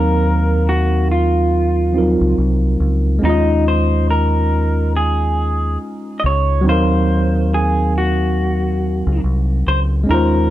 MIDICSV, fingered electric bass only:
0, 0, Header, 1, 2, 480
1, 0, Start_track
1, 0, Tempo, 857143
1, 1807, Time_signature, 4, 2, 24, 8
1, 5881, End_track
2, 0, Start_track
2, 0, Title_t, "Fingered electric bass"
2, 0, Program_c, 0, 33
2, 0, Note_on_c, 0, 39, 100
2, 1211, Note_off_c, 0, 39, 0
2, 1237, Note_on_c, 0, 37, 76
2, 1325, Note_off_c, 0, 37, 0
2, 1332, Note_on_c, 0, 36, 71
2, 1554, Note_off_c, 0, 36, 0
2, 1568, Note_on_c, 0, 37, 79
2, 1792, Note_off_c, 0, 37, 0
2, 1809, Note_on_c, 0, 39, 95
2, 3226, Note_off_c, 0, 39, 0
2, 3494, Note_on_c, 0, 37, 85
2, 3735, Note_off_c, 0, 37, 0
2, 3735, Note_on_c, 0, 39, 94
2, 5052, Note_off_c, 0, 39, 0
2, 5078, Note_on_c, 0, 37, 80
2, 5165, Note_off_c, 0, 37, 0
2, 5174, Note_on_c, 0, 36, 75
2, 5395, Note_off_c, 0, 36, 0
2, 5416, Note_on_c, 0, 37, 85
2, 5637, Note_off_c, 0, 37, 0
2, 5652, Note_on_c, 0, 39, 90
2, 5881, Note_off_c, 0, 39, 0
2, 5881, End_track
0, 0, End_of_file